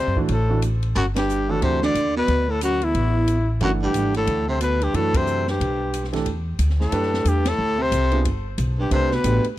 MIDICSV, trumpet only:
0, 0, Header, 1, 2, 480
1, 0, Start_track
1, 0, Key_signature, 1, "major"
1, 0, Tempo, 331492
1, 1384, Time_signature, 4, 2, 24, 8
1, 13879, End_track
2, 0, Start_track
2, 0, Title_t, "Trumpet"
2, 0, Program_c, 0, 56
2, 0, Note_on_c, 0, 72, 87
2, 265, Note_off_c, 0, 72, 0
2, 470, Note_on_c, 0, 69, 72
2, 895, Note_off_c, 0, 69, 0
2, 1410, Note_on_c, 0, 66, 88
2, 1537, Note_off_c, 0, 66, 0
2, 1698, Note_on_c, 0, 67, 83
2, 2183, Note_on_c, 0, 69, 81
2, 2204, Note_off_c, 0, 67, 0
2, 2356, Note_off_c, 0, 69, 0
2, 2368, Note_on_c, 0, 72, 85
2, 2631, Note_off_c, 0, 72, 0
2, 2668, Note_on_c, 0, 74, 90
2, 3101, Note_off_c, 0, 74, 0
2, 3150, Note_on_c, 0, 71, 99
2, 3636, Note_on_c, 0, 69, 83
2, 3657, Note_off_c, 0, 71, 0
2, 3803, Note_off_c, 0, 69, 0
2, 3820, Note_on_c, 0, 66, 88
2, 4115, Note_on_c, 0, 64, 89
2, 4137, Note_off_c, 0, 66, 0
2, 5057, Note_off_c, 0, 64, 0
2, 5261, Note_on_c, 0, 66, 89
2, 5385, Note_off_c, 0, 66, 0
2, 5559, Note_on_c, 0, 67, 81
2, 5987, Note_off_c, 0, 67, 0
2, 6041, Note_on_c, 0, 69, 86
2, 6469, Note_off_c, 0, 69, 0
2, 6513, Note_on_c, 0, 72, 80
2, 6670, Note_off_c, 0, 72, 0
2, 6698, Note_on_c, 0, 71, 84
2, 7004, Note_on_c, 0, 67, 77
2, 7025, Note_off_c, 0, 71, 0
2, 7178, Note_on_c, 0, 69, 87
2, 7199, Note_off_c, 0, 67, 0
2, 7482, Note_on_c, 0, 72, 83
2, 7504, Note_off_c, 0, 69, 0
2, 7941, Note_off_c, 0, 72, 0
2, 7959, Note_on_c, 0, 67, 73
2, 8842, Note_off_c, 0, 67, 0
2, 9867, Note_on_c, 0, 69, 81
2, 10549, Note_on_c, 0, 67, 78
2, 10570, Note_off_c, 0, 69, 0
2, 10839, Note_on_c, 0, 69, 90
2, 10860, Note_off_c, 0, 67, 0
2, 11325, Note_on_c, 0, 72, 96
2, 11347, Note_off_c, 0, 69, 0
2, 11968, Note_off_c, 0, 72, 0
2, 12755, Note_on_c, 0, 67, 71
2, 12911, Note_off_c, 0, 67, 0
2, 12947, Note_on_c, 0, 72, 96
2, 13229, Note_on_c, 0, 71, 86
2, 13251, Note_off_c, 0, 72, 0
2, 13694, Note_off_c, 0, 71, 0
2, 13879, End_track
0, 0, End_of_file